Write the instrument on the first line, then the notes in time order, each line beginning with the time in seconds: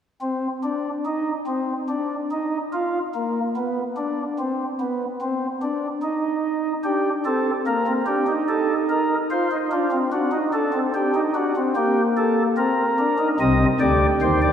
pipe organ
0.22 C4
0.64 D4
1.06 D#4
1.47 C4
1.89 D4
2.31 D#4
2.73 F4
3.15 A#3
3.56 B3
3.97 D4
4.39 C4
4.80 B3
5.21 C4
5.62 D4
6.03 D#4
6.84 D4 G4
7.26 C4 A4
7.67 A#3 A#4
7.87 C4
8.06 D4 G4
8.27 D#4
8.49 A4
8.89 A#4
9.31 F4 C5
9.52 D#4
9.72 D4 F4
9.92 C4
10.12 D4 F#4
10.32 D#4
10.53 D4 A4
10.73 C4
10.95 D4 G4
11.15 D#4
11.35 D4 F#4
11.56 C4
11.76 A#3 G4
12.17 A4
12.57 C4 A#4
12.99 D4
13.19 D#4
13.40 C2 C3 C4 D#5
13.80 D2 D3 G4 D5
14.21 D#2 D#3 C5
14.42 D5